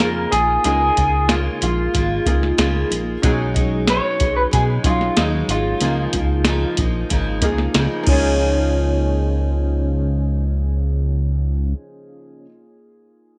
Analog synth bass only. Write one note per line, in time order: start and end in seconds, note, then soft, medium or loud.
0.00 0.26 F2 medium
0.32 0.58 A#1 medium
0.65 0.91 C#2 loud
0.97 1.49 C#2 loud
1.62 1.88 A#1 medium
1.95 2.20 G#1 medium
2.26 2.52 C#2 medium
2.58 2.84 C#2 loud
2.91 3.17 A#1 medium
3.23 4.00 B1 loud
4.21 4.46 B1 loud
4.53 4.79 B2 loud
4.84 5.10 B1 loud
5.17 5.43 D#2 medium
5.49 5.75 G#1 medium
5.81 6.07 C#2 loud
6.13 6.65 C#2 medium
6.78 7.04 A#1 medium
7.11 7.43 G#1 medium
7.42 7.68 C#2 loud
7.75 7.88 C#2 loud
8.07 11.74 C#2 medium